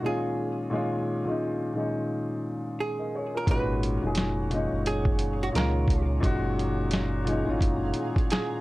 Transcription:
0.01 upright piano A#2 D#3 G#3 C#4
0.06 upright piano F4, hollow-body jazz guitar G#4
0.70 upright piano A#2 D#3 G#3 C#4
0.75 upright piano F4
1.25 upright piano A#2 D#3 G#3 C#4
1.30 upright piano D#4
1.73 upright piano A#2 D#3 G#3 C#4
1.79 upright piano D#4
2.80 hollow-body jazz guitar G#4
2.99 upright piano A#4 D#5
3.15 upright piano G#4 C#5
3.34 upright piano F4 A#4, hollow-body jazz guitar A#4
3.46 sub bass G#1, upright piano A#2 D#3 G#3 C#4, ambient pad C#5 F#5 A#5 C#6, kick, closed hi-hat
3.51 upright piano F#4, hollow-body jazz guitar B4
3.83 closed hi-hat
4.02 sub bass F1, upright piano A#2 D#3 G#3 C#4
4.07 upright piano G#4
4.15 snare, closed hi-hat
4.50 upright piano A#2 D#3 G#3 C#4, closed hi-hat
4.55 upright piano D#4
4.72 sub bass F#1
4.86 hollow-body jazz guitar G#4, closed hi-hat
5.05 kick
5.19 closed hi-hat
5.43 hollow-body jazz guitar F#4, closed hi-hat
5.52 sub bass C#2, upright piano A#2 D#3 G#3, hollow-body jazz guitar A#4, closed hi-hat
5.56 upright piano C#4 F4, snare
5.88 kick, closed hi-hat
6.20 sub bass F#1, upright piano A#2 D#3 G#3 C#4, ambient pad G#4 F5 G#5, kick, closed hi-hat
6.25 upright piano F#4
6.59 closed hi-hat
6.91 snare, closed hi-hat
7.25 upright piano A#2 D#3 G#3, closed hi-hat
7.29 upright piano C#4 D#4
7.44 sub bass G#1, upright piano A2 D#3 G#3 C#4
7.49 upright piano A#2 F4
7.61 sub bass F#1, kick, closed hi-hat
7.94 closed hi-hat
8.16 kick, closed hi-hat
8.30 hollow-body jazz guitar G#4, snare, closed hi-hat

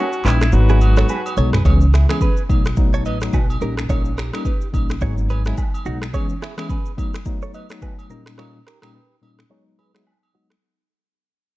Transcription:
Already playing: horn section G3 C#4 A#4 C#5, alto saxophone F#4
0.13 shaker
0.25 upright bass A#1, tine electric piano G3 A#3 C#4 D#4, alto saxophone E4, clean electric guitar G4 B4, clap, high agogo, shaker
0.41 finger snap, cross-stick, shaker
0.52 upright bass G#1, tine electric piano F#3 G#3 B3 D#4, horn section B3 F#4 G#4 B4, alto saxophone F#4, shaker
0.69 clean electric guitar E4 G#4, shaker
0.81 high agogo, shaker
0.96 tine electric piano F#3 G#3 B3 D#4, clean electric guitar A4 C#5, finger snap, cross-stick, shaker
1.09 clean electric guitar G#4 B4, low woodblock, shaker
1.26 high agogo, shaker
1.37 upright bass B1, tine electric piano F#3 G#3 B3 D#4, clean electric guitar A4 C#5, shaker
1.53 clean electric guitar G#4 B4, finger snap, cross-stick, mid tom, shaker
1.65 upright bass C#2, tine electric piano E3 G#3 B3 C#4, clean electric guitar G#4 C#5, kick, high agogo, shaker
1.81 shaker
1.94 clean electric guitar E4 G#4, finger snap, cross-stick, shaker
2.09 tine electric piano E3 G#3 B3 C#4, clean electric guitar E4 G#4, finger snap, cross-stick, high agogo, shaker
2.21 clean electric guitar G#4 B4, kick, shaker
2.37 shaker
2.49 upright bass B1, tine electric piano F#3 A3 B3 D#4, kick, high agogo, shaker
2.65 finger snap, cross-stick, shaker
2.77 tine electric piano F#3 A3 B3 D#4, kick, shaker
2.93 clean electric guitar A4 C#5, shaker
3.05 upright bass A1, clean electric guitar B4 D#5, high agogo, shaker
3.21 tine electric piano F#3 A3 B3 D#4, finger snap, cross-stick, shaker
3.33 upright bass B1, clean electric guitar F#4 B4, kick, low woodblock, shaker
3.50 high agogo, shaker
3.61 upright bass A#1, tine electric piano G3 A#3 C#4 D#4, clean electric guitar G4 A#4, shaker
3.77 finger snap, cross-stick, shaker
3.89 upright bass A#1, tine electric piano G3 A#3 C#4 D#4, clean electric guitar A#4 C#5, kick, high agogo, shaker
4.05 shaker
4.18 clean electric guitar G4 A#4, finger snap, cross-stick, shaker
4.33 tine electric piano G3 A#3 C#4 D#4, clean electric guitar G4 A#4, finger snap, cross-stick, high agogo, shaker
4.45 clean electric guitar G4 B4, kick, shaker
4.61 shaker
4.73 upright bass A#1, tine electric piano G3 A#3 C#4 D#4, kick, high agogo, shaker
4.89 finger snap, cross-stick, shaker
5.01 upright bass G#1, tine electric piano F#3 G#3 B3 D#4, clean electric guitar G#4 C#5, kick, shaker
5.18 shaker
5.30 clean electric guitar G#4 B4, high agogo, shaker
5.45 tine electric piano F#3 G#3 B3 D#4, clean electric guitar E4 G#4, finger snap, cross-stick, shaker
5.57 kick, low woodblock, shaker
5.74 high agogo, shaker
5.85 upright bass B1, tine electric piano F#3 G#3 B3 D#4, clean electric guitar D#4 F#4, shaker
6.02 finger snap, cross-stick, shaker
6.13 tine electric piano E3 G#3 B3 C#4, clean electric guitar G#4 C#5, kick, high agogo, shaker
6.29 shaker
6.42 clean electric guitar E4 G#4, finger snap, cross-stick, shaker
6.58 tine electric piano E3 G#3 B3 C#4, clean electric guitar E4 G#4, finger snap, cross-stick, high agogo, shaker
6.70 clean electric guitar G#4 B4, kick, shaker
6.86 shaker
6.97 tine electric piano F#3 A3 B3 D#4, kick, high agogo, shaker
7.14 finger snap, cross-stick, shaker
7.25 tine electric piano F#3 A3 B3 D#4, kick, shaker
7.42 clean electric guitar A4 C#5, shaker
7.54 clean electric guitar B4 D#5, high agogo, shaker
7.69 tine electric piano F#3 A3 B3 D#4, finger snap, cross-stick, shaker
7.82 clean electric guitar F#4 B4, kick, low woodblock, shaker
7.99 high agogo, shaker
8.10 tine electric piano A#2 G3 A#3 C#4 D#4, clean electric guitar G4 A#4, shaker
8.26 finger snap, cross-stick, shaker
8.38 tine electric piano A#2 G3 A#3 C#4 D#4, clean electric guitar A#4 C#5, finger snap, cross-stick, high agogo
8.67 clean electric guitar G4 A#4, finger snap, cross-stick
8.82 tine electric piano A#2 G3 A#3 C#4 D#4, clean electric guitar G4 A#4, finger snap, cross-stick, high agogo
8.95 clean electric guitar G4 B4
9.22 tine electric piano A#2 G3 A#3 C#4 D#4, high agogo
9.39 finger snap, cross-stick
9.50 tine electric piano F#3 G#3 B3 D#4, clean electric guitar G#4 C#5
9.79 clean electric guitar G#4 B4, high agogo
9.94 tine electric piano F#3 G#3 B3 D#4, clean electric guitar E4 G#4, finger snap, cross-stick
10.07 low woodblock
10.23 high agogo
10.34 tine electric piano F#3 G#3 B3 D#4, clean electric guitar D#4 F#4
10.50 finger snap, cross-stick

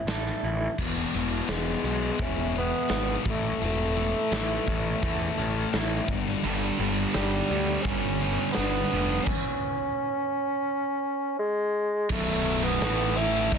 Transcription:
Already playing: clean electric guitar A2 C#4 E4
0.07 picked electric bass A1, clean electric guitar A4, snare, open hi-hat
0.26 snare
0.43 picked electric bass A1, clean electric guitar E4
0.78 picked electric bass E1, clean electric guitar E2, distorted electric guitar E2 B2 E3, kick, crash
1.14 picked electric bass E1, distorted electric guitar E2 B2 E3, clean electric guitar E3, open hi-hat
1.48 picked electric bass E1, distorted electric guitar E2 B2 E3, bassoon G#3, clean electric guitar B3, snare, open hi-hat
1.84 picked electric bass B1, distorted electric guitar E2 B2 E3, clean electric guitar G#3, open hi-hat
2.18 picked electric bass E1, distorted electric guitar E2 B2 E3, bassoon C#4, clean electric guitar E4, kick, open hi-hat
2.55 distorted electric guitar E2 B2 E3, clean electric guitar G#3, bassoon B3, open hi-hat
2.89 picked electric bass G#1, distorted electric guitar E2 B2 E3, clean electric guitar B3, snare, open hi-hat
3.25 picked electric bass A1, distorted electric guitar A2 E3 A3, clean electric guitar A2, bassoon A3, kick, open hi-hat
3.61 picked electric bass E1, clean electric guitar A2, distorted electric guitar A2 E3 A3, open hi-hat
3.65 bassoon A3
3.96 distorted electric guitar A2 E3 A3, clean electric guitar A3, open hi-hat
4.32 picked electric bass A1, distorted electric guitar A2 E3 A3, clean electric guitar E4, snare, open hi-hat
4.67 picked electric bass A1, distorted electric guitar A2 E3 A3, clean electric guitar C#4, kick, open hi-hat
5.02 picked electric bass E2, distorted electric guitar A2 E3 A3, clean electric guitar A4, kick, open hi-hat
5.38 picked electric bass A1, distorted electric guitar A2 E3 A3, clean electric guitar C#4, open hi-hat
5.73 picked electric bass A1, distorted electric guitar A2 E3 A3, clean electric guitar E4, snare, open hi-hat
6.08 picked electric bass G1, distorted electric guitar G2 D3 G3, clean electric guitar G2, kick, open hi-hat
6.26 snare
6.43 picked electric bass G1, distorted electric guitar G2 D3 G3, clean electric guitar G2, open hi-hat
6.78 picked electric bass G1, distorted electric guitar G2 D3 G3, clean electric guitar G3, open hi-hat
7.14 picked electric bass G1, distorted electric guitar G2 D3 G3, bassoon G3, snare, open hi-hat
7.49 picked electric bass D2, distorted electric guitar G2 D3 G3, clean electric guitar B3, open hi-hat
7.82 picked electric bass G1, bassoon C#4, kick, open hi-hat
7.87 distorted electric guitar G2 D3 G3, clean electric guitar G4
8.20 distorted electric guitar G2 D3 G3, clean electric guitar B3, open hi-hat
8.52 bassoon B3, snare, open hi-hat
8.57 picked electric bass G1, distorted electric guitar G2 D3 G3, clean electric guitar D4
8.91 picked electric bass F1, distorted electric guitar G2 D3 G3, clean electric guitar B3, open hi-hat
9.23 bassoon C#4, kick, crash
11.39 bassoon G#3
12.09 picked electric bass B0, distorted electric guitar B1 F#2 B2, bassoon A3, kick, crash
12.46 crash
12.64 bassoon B3
12.81 picked electric bass A1, distorted electric guitar A2 E3 A3, snare, crash
13.17 bassoon E4, snare, crash
13.52 picked electric bass D1, distorted electric guitar D2 A2 D3, bassoon D#4, kick, crash

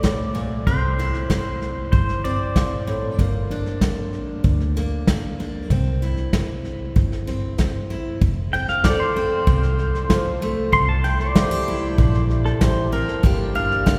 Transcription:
Already playing: fingered electric bass C2, steel-string acoustic guitar A3 C4, pedal steel guitar D5
0.03 steel-string acoustic guitar A2, kick, snare, hi-hat pedal
0.35 steel-string acoustic guitar A#2, snare
0.67 fingered electric bass C2, steel-string acoustic guitar C3 C4, pedal steel guitar C5, kick, snare
0.98 steel-string acoustic guitar E4, snare
1.14 snare
1.30 steel-string acoustic guitar E3, kick, snare, hi-hat pedal
1.62 snare
1.92 fingered electric bass G1, steel-string acoustic guitar G2, pedal steel guitar C5, kick, snare
2.09 snare
2.24 steel-string acoustic guitar C4, pedal steel guitar D5, snare
2.56 steel-string acoustic guitar A#2, kick, snare, hi-hat pedal
2.87 steel-string acoustic guitar A2, snare
3.19 fingered electric bass G1, steel-string acoustic guitar G2 A#3, kick, snare
3.50 steel-string acoustic guitar D4, snare
3.66 snare
3.81 steel-string acoustic guitar G3, kick, snare, hi-hat pedal
4.13 snare
4.44 fingered electric bass D2, steel-string acoustic guitar D3, kick, snare
4.60 snare
4.76 steel-string acoustic guitar A#3, snare
5.07 steel-string acoustic guitar G3, kick, snare, hi-hat pedal
5.39 steel-string acoustic guitar D4, snare
5.70 fingered electric bass C2, steel-string acoustic guitar C3 C4, kick, snare
6.02 steel-string acoustic guitar E4, snare
6.17 snare
6.33 steel-string acoustic guitar E3, kick, snare, hi-hat pedal
6.64 snare
6.96 fingered electric bass G1, steel-string acoustic guitar G2, kick, snare
7.12 snare
7.27 steel-string acoustic guitar C4, snare
7.58 steel-string acoustic guitar E3, kick, snare, hi-hat pedal
7.90 steel-string acoustic guitar E4, snare
8.21 fingered electric bass F1, steel-string acoustic guitar F2, kick, snare
8.53 steel-string acoustic guitar C4, pedal steel guitar G5, snare
8.68 pedal steel guitar F5, snare
8.83 steel-string acoustic guitar F3 A4, grand piano F4 A4 C5, pedal steel guitar D5, kick, snare, hi-hat pedal
9.00 pedal steel guitar C5
9.16 steel-string acoustic guitar C4, pedal steel guitar C5, snare
9.47 fingered electric bass C2, steel-string acoustic guitar C3, kick, snare
9.63 snare
9.79 snare
9.94 snare
10.09 steel-string acoustic guitar F3, grand piano F4 A4 C5, kick, snare, hi-hat pedal
10.41 steel-string acoustic guitar A3, snare
10.72 fingered electric bass C2, steel-string acoustic guitar C3, pedal steel guitar C6, kick, snare
10.89 pedal steel guitar A5
11.04 steel-string acoustic guitar E4, pedal steel guitar G5, snare
11.19 pedal steel guitar D5, snare
11.34 steel-string acoustic guitar E3 F4, grand piano E4 G4 C5, kick, snare, hi-hat pedal
11.51 steel-string acoustic guitar G4
11.67 steel-string acoustic guitar E4, snare
11.98 fingered electric bass A#1, steel-string acoustic guitar G2, kick, snare
12.14 snare
12.30 snare
12.45 pedal steel guitar A4, snare
12.60 fingered electric bass A1, steel-string acoustic guitar E3, grand piano E4 G4 C5, pedal steel guitar C5, kick, snare, hi-hat pedal
12.92 steel-string acoustic guitar C4, pedal steel guitar A#4, snare
13.08 snare
13.23 fingered electric bass G1, steel-string acoustic guitar G2 G3 A#3 D4 G4, kick, snare
13.55 steel-string acoustic guitar D4, pedal steel guitar F5, snare
13.71 snare
13.86 steel-string acoustic guitar G3 G4, grand piano D4 G4 A#4, kick, snare, hi-hat pedal

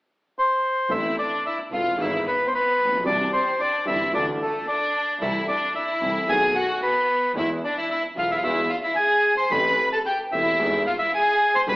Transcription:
0.39 bandoneon C5
0.89 double bass A1, grand piano A1 A2 E3 B3 C4 A4, violin section E4, bandoneon E5
1.19 violin section D4, bandoneon D5
1.46 violin section E4, bandoneon E5
1.71 double bass E1, grand piano E1 E2 E3 B3 C4 A4, violin section F4, bandoneon F5
1.98 double bass G#1, grand piano G#1 G#2 E3 G#3 B3 G#4, violin section E4, bandoneon E5
2.27 violin section B3, bandoneon B4
2.45 violin section C4, bandoneon C5
2.53 violin section B3, bandoneon B4
2.79 double bass A#1
2.85 grand piano A1
2.91 grand piano A#1
2.97 grand piano B1
3.04 double bass C2, grand piano C2 C3 E3 G3 C4 G4, violin section D4, bandoneon D5
3.33 violin section C4, bandoneon C5
3.60 violin section D4, bandoneon D5
3.85 grand piano G1 G2 E3 G3 C4 G4, double bass G1, violin section E4, bandoneon E5
4.13 grand piano D2 D3 E3 A3 D4 F4, double bass D2, violin section D4, bandoneon D5
4.42 violin section A3, bandoneon A4
4.68 violin section D4, bandoneon D5
5.20 double bass C2, grand piano C2 C3 E3 A3 C4 A4, violin section E4, bandoneon E5
5.48 violin section D4, bandoneon D5
5.75 violin section E4, bandoneon E5
6.01 double bass C2, grand piano C2 C3 E3 A3 C4 A4
6.28 double bass B1, grand piano B1 B2 D#3 A3 B3 F#4, violin section G#4, bandoneon G#5
6.55 violin section F#4, bandoneon F#5
6.83 violin section B3, bandoneon B4
7.34 double bass E2, grand piano E2 E3 G#3 B3 G#4, violin section E4, bandoneon E5
7.64 violin section D4, bandoneon D5
7.77 violin section E4, bandoneon E5
7.91 violin section E4, bandoneon E5
8.15 double bass B1, grand piano B1 B2 E3 G#3 B3 G#4, violin section F4, bandoneon F5
8.31 violin section E4, bandoneon E5
8.37 violin section F4, bandoneon F5
8.42 double bass E2, grand piano E2 E3 G#3 B3 G#4, violin section E4, bandoneon E5
8.70 violin section F4, bandoneon F5
8.83 violin section E4, bandoneon E5
8.96 violin section G#4, bandoneon G#5
9.37 violin section C5, bandoneon C6
9.51 double bass A1, grand piano A1 A2 E3 A3 C4 G4, violin section B4, bandoneon B5
9.92 violin section A4, bandoneon A5
10.06 violin section G4, bandoneon G5
10.32 double bass E1, grand piano E1 E2 E3 A3 C4 G4, violin section E4, bandoneon E5
10.59 grand piano G#1 G#2 E3 G#3 B3 G#4, double bass G#1
10.87 violin section F4, bandoneon F5
10.99 violin section E4, bandoneon E5
11.14 violin section G#4, bandoneon G#5
11.55 violin section C5, bandoneon C6
11.67 grand piano G1 G2 D3 G3 B3 G4, double bass G1, violin section B4, bandoneon B5

